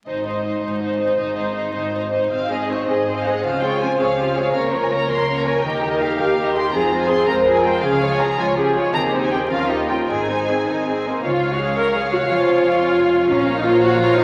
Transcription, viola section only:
\new Staff \with { instrumentName = "Viola section" } { \time 6/8 \key aes \major \tempo 4. = 109 ees'8 ees'8 ees'8 ees'8 ees'8 ees'8 | ees'8 ees'8 ees'8 ees'8 ees'8 ees'8 | <c' ees'>8 <aes c'>8 <c' ees'>8 <aes c'>8 <c' ees'>8 <aes c'>8 | <f des'>8 <aes c'>8 <f des'>8 <aes c'>8 <f des'>8 <aes c'>8 |
<bes des'>8 <f bes>8 <bes des'>8 <f bes>8 <bes des'>8 <f bes>8 | <g ees'>8 <ees g'>8 <g ees'>8 <ees g'>8 <g ees'>8 <ees g'>8 | <f c'>8 aes8 <f c'>8 aes8 <f c'>8 aes8 | <f des'>8 <aes f'>8 <f des'>8 <aes f'>8 <f des'>8 <aes f'>8 |
<ees c'>8 <aes ees'>8 <ees c'>8 <f des'>8 <g bes>8 <f des'>8 | <ees c'>8 <aes ees'>8 <ees c'>8 ees'8 c'8 bes8 | \key des \major f'8. ges'16 aes'8 bes'8 aes'8 ges'8 | f'2. |
des'8. ees'16 f'8 ges'8 f'8 ees'8 | }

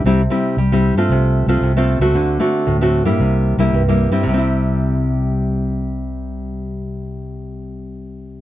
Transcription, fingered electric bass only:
\new Staff \with { instrumentName = "Fingered electric bass" } { \clef bass \time 4/4 \key c \major \tempo 4 = 114 c,8 r8 c,8. g,16 c,8. c,16 c,8. des,16 | d,8 r8 d,8. g,16 c,8. c,16 c,8. g,16 | c,1~ | c,1 | }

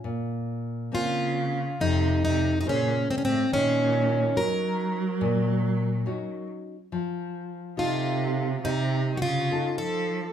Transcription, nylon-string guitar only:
\new Staff \with { instrumentName = "Nylon-string guitar" } { \time 4/4 \key bes \minor \tempo 4 = 70 bes,4 <bes c' des'>4 f,4 <des bes' c''>4 | ees4 <des' ees' ges'>4 bes,4 <des' ees' ges'>4 | f4 <ees' f' a'>4 c4 <ees' f' a'>4 | }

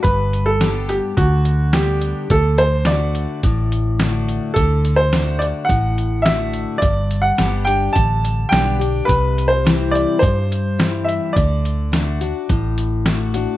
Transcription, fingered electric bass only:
\new Staff \with { instrumentName = "Fingered electric bass" } { \clef bass \time 4/4 \key d \mixolydian \tempo 4 = 106 g,,2 d,2 | d,2 a,,2 | d,2 a,,2 | g,,4 g,,4 a,,4 b,,4 |
c,2 g,2 | d,2 a,,2 | }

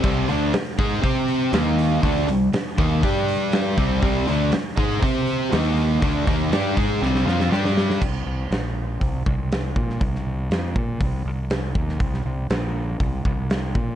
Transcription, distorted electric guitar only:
\new Staff \with { instrumentName = "Distorted electric guitar" } { \time 4/4 \key c \minor \tempo 4 = 120 <c g c'>8 <d a d'>8 r8 <aes ees' aes'>8 <c' g' c''>4 <ees bes ees'>4 | <d a d'>8 <c g>8 r8 <ees bes ees'>8 <g d' g'>4. <c g c'>8 | <c g c'>8 <d a d'>8 r8 <aes ees' aes'>8 <c' g' c''>4 <ees bes ees'>4 | <d a d'>8 <ees bes ees'>8 <g d' g'>8 <aes ees' aes'>8 <c g c'>8 <f c' f'>8 <g d' g'>4 |
r1 | r1 | r1 | }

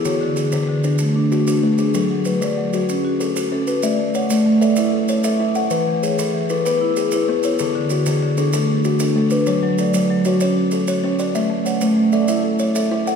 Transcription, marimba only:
\new Staff \with { instrumentName = "Marimba" } { \time 12/8 \key a \major \tempo 4. = 128 << { <gis' cis''>4 r8 b'4. r8 d'4. fis'4 | b'4 r8 d''4 gis'4 fis'4. a'4 | d''4 fis''8 d''4 d''4 a'4. e''4~ | e''8 r8 cis''8 a'4 a'4 e'4. b'4~ |
b'8 r8 b'8 gis'4 gis'4 d'4. a'4~ | a'8 r8 d''8 b'4 b'4 fis'4. cis''4~ | cis''8 r8 fis''4. d''4 a'4. e''4 | } \\ { e'8 d4 r8 d4 a4 r8 d'4 d'8~ | d'8 fis4 r8 fis4 cis'4 r8 fis'4 fis'8~ | fis'8 a4 r8 a4 e'4 r8 a'4 a'8~ | a'8 e4 r8 e4 b4 r8 e'4 e'8~ |
e'8 d4 r8 d4 a4 r8 d'4 d'8~ | d'8 fis4 r8 fis4 cis'4 r8 fis'4 fis'8~ | fis'8 a4 r8 a4 e'4 r8 a'4 a'8 | } >> }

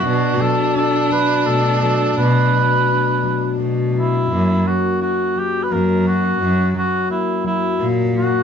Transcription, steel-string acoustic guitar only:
\new Staff \with { instrumentName = "Steel-string acoustic guitar" } { \clef bass \time 3/4 \key fis \phrygian \tempo 4 = 85 << { d'4 d'4 a4 | a'4 d'4 a4 | ais4 e'4 ais4 | e'4 ais4 ais4 | } \\ { b,8 fis4 fis4 fis8 | b,8 fis4 fis4 fis8 | fis,8 fis4 fis4 fis8 | fis,8 fis4 fis4 fis8 | } >> }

